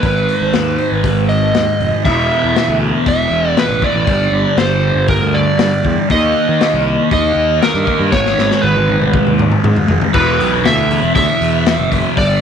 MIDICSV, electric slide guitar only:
0, 0, Header, 1, 2, 480
1, 0, Start_track
1, 0, Tempo, 505902
1, 28, Time_signature, 4, 2, 24, 8
1, 11775, End_track
2, 0, Start_track
2, 0, Title_t, "Electric slide guitar"
2, 0, Program_c, 0, 29
2, 0, Note_on_c, 0, 71, 84
2, 403, Note_off_c, 0, 71, 0
2, 403, Note_on_c, 0, 72, 84
2, 526, Note_off_c, 0, 72, 0
2, 526, Note_on_c, 0, 71, 84
2, 725, Note_off_c, 0, 71, 0
2, 725, Note_on_c, 0, 72, 84
2, 849, Note_off_c, 0, 72, 0
2, 849, Note_on_c, 0, 71, 84
2, 1223, Note_on_c, 0, 75, 72
2, 1440, Note_off_c, 0, 71, 0
2, 1944, Note_off_c, 0, 75, 0
2, 1948, Note_on_c, 0, 76, 97
2, 2631, Note_off_c, 0, 76, 0
2, 2924, Note_on_c, 0, 76, 93
2, 3403, Note_on_c, 0, 71, 82
2, 3410, Note_off_c, 0, 76, 0
2, 3642, Note_on_c, 0, 74, 89
2, 3643, Note_off_c, 0, 71, 0
2, 4348, Note_on_c, 0, 72, 86
2, 4376, Note_off_c, 0, 74, 0
2, 4794, Note_off_c, 0, 72, 0
2, 4832, Note_on_c, 0, 70, 83
2, 5069, Note_on_c, 0, 74, 86
2, 5077, Note_off_c, 0, 70, 0
2, 5796, Note_off_c, 0, 74, 0
2, 5800, Note_on_c, 0, 75, 100
2, 6715, Note_off_c, 0, 75, 0
2, 6766, Note_on_c, 0, 75, 94
2, 7203, Note_off_c, 0, 75, 0
2, 7237, Note_on_c, 0, 70, 78
2, 7704, Note_on_c, 0, 73, 90
2, 7726, Note_off_c, 0, 70, 0
2, 8176, Note_on_c, 0, 71, 76
2, 8199, Note_off_c, 0, 73, 0
2, 8863, Note_off_c, 0, 71, 0
2, 9624, Note_on_c, 0, 71, 93
2, 10111, Note_on_c, 0, 76, 99
2, 10119, Note_off_c, 0, 71, 0
2, 10571, Note_off_c, 0, 76, 0
2, 10583, Note_on_c, 0, 76, 96
2, 11506, Note_off_c, 0, 76, 0
2, 11554, Note_on_c, 0, 74, 97
2, 11775, Note_off_c, 0, 74, 0
2, 11775, End_track
0, 0, End_of_file